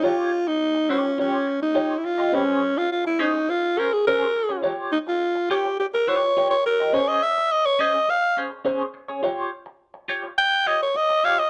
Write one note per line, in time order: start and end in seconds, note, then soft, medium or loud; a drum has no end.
0.03 0.30 F4 medium
0.03 0.49 F4 medium
0.03 0.30 G4 loud
0.03 0.30 C#5 medium
0.47 0.91 D#4 loud
0.47 muted clean electric guitar stroke soft
0.75 muted clean electric guitar stroke soft
0.89 1.19 C#4 medium
0.89 1.10 F4 medium
0.89 1.04 G4 medium
0.89 1.03 C#5 loud
1.04 muted clean electric guitar stroke soft
1.18 1.60 C#4 medium
1.18 1.45 F4 medium
1.18 1.46 G4 medium
1.18 1.46 C#5 medium
1.47 muted clean electric guitar stroke soft
1.62 1.99 D#4 medium
1.62 muted clean electric guitar stroke soft
1.75 1.92 F4 medium
1.75 1.92 G4 medium
1.75 1.92 C#5 medium
1.98 2.06 E4 medium
2.04 2.36 F4 medium
2.04 muted clean electric guitar stroke soft
2.18 2.32 F4 soft
2.18 2.32 G4 medium
2.18 2.32 D#5 medium
2.32 2.43 C4 medium
2.32 2.79 C#4 medium
2.32 2.44 G4 medium
2.32 2.45 B4 medium
2.43 2.60 C#4 medium
2.43 2.60 G#4 medium
2.43 2.60 C5 medium
2.76 2.91 F4 medium
2.76 muted clean electric guitar stroke soft
2.92 3.05 F4 medium
3.05 3.23 E4 medium
3.05 muted clean electric guitar stroke soft
3.19 3.36 C#4 medium
3.19 3.51 D#4 medium
3.19 3.33 G#4 medium
3.19 3.32 C5 medium
3.33 muted clean electric guitar stroke soft
3.48 3.80 F4 medium
3.48 muted clean electric guitar stroke soft
3.78 3.90 C#4 medium
3.78 3.91 G#4 medium
3.78 3.95 A#4 medium
3.78 3.91 C5 medium
3.93 4.06 G#4 medium
3.93 muted clean electric guitar stroke soft
4.07 4.23 C#4 medium
4.07 4.23 G#4 loud
4.07 4.60 A#4 loud
4.07 4.24 C5 loud
4.36 muted clean electric guitar stroke soft
4.49 4.62 C#4 medium
4.49 4.62 G#4 medium
4.49 4.62 C#5 medium
4.63 4.90 F4 medium
4.63 4.90 G4 medium
4.63 4.90 C#5 loud
4.92 4.99 D#4 medium
5.07 5.48 F4 medium
5.07 muted clean electric guitar stroke soft
5.35 muted clean electric guitar stroke soft
5.50 5.66 F4 medium
5.50 5.77 G4 medium
5.50 5.65 G4 loud
5.50 5.64 C#5 loud
5.66 muted clean electric guitar stroke soft
5.79 5.86 G4 medium
5.79 muted clean electric guitar stroke soft
5.94 6.10 A#4 medium
5.94 muted clean electric guitar stroke soft
6.07 6.28 F4 medium
6.07 6.23 G4 medium
6.07 6.50 C#5 medium
6.07 6.22 C#5 medium
6.23 muted clean electric guitar stroke medium
6.37 6.53 F4 medium
6.37 6.53 G4 medium
6.37 6.54 C#5 medium
6.50 6.64 C#5 medium
6.66 6.95 A#4 loud
6.66 muted clean electric guitar stroke medium
6.80 6.93 F4 soft
6.80 6.93 G4 medium
6.80 6.93 D#5 medium
6.93 7.20 C#4 medium
6.93 7.20 G#4 medium
6.93 7.21 C5 medium
6.93 7.09 C#5 medium
7.08 7.24 D#5 loud
7.22 7.53 E5 medium
7.38 muted clean electric guitar stroke soft
7.52 7.67 D#5 medium
7.65 7.82 C#5 medium
7.65 muted clean electric guitar stroke soft
7.79 7.96 C#4 medium
7.79 7.93 G#4 medium
7.79 7.92 C5 loud
7.79 8.12 D#5 loud
7.93 muted clean electric guitar stroke soft
8.08 8.38 F5 medium
8.08 muted clean electric guitar stroke soft
8.37 8.50 C#4 medium
8.37 8.50 G#4 medium
8.37 8.50 C5 medium
8.51 muted clean electric guitar stroke soft
8.65 8.82 C#4 loud
8.65 8.82 G#4 medium
8.65 8.82 C5 medium
8.94 muted clean electric guitar stroke soft
9.08 9.22 C#4 medium
9.08 9.22 G#4 medium
9.08 9.22 C#5 medium
9.23 9.50 F4 medium
9.23 9.50 G4 medium
9.23 9.50 C#5 loud
9.66 muted clean electric guitar stroke soft
9.94 muted clean electric guitar stroke medium
10.08 10.25 F4 medium
10.08 10.24 G4 medium
10.08 10.23 C#5 medium
10.24 muted clean electric guitar stroke medium
10.38 10.69 G5 loud
10.38 muted clean electric guitar stroke soft
10.66 10.80 F4 medium
10.66 10.80 G4 medium
10.66 10.80 C#5 medium
10.66 10.82 D#5 loud
10.81 10.98 C#5 medium
10.81 muted clean electric guitar stroke medium
10.95 11.27 D#5 loud
10.95 muted clean electric guitar stroke soft
11.10 muted clean electric guitar stroke medium
11.24 11.40 F4 medium
11.24 11.39 G4 medium
11.24 11.38 C#5 loud
11.24 11.41 F5 loud
11.39 11.50 D#5 loud
11.39 muted clean electric guitar stroke soft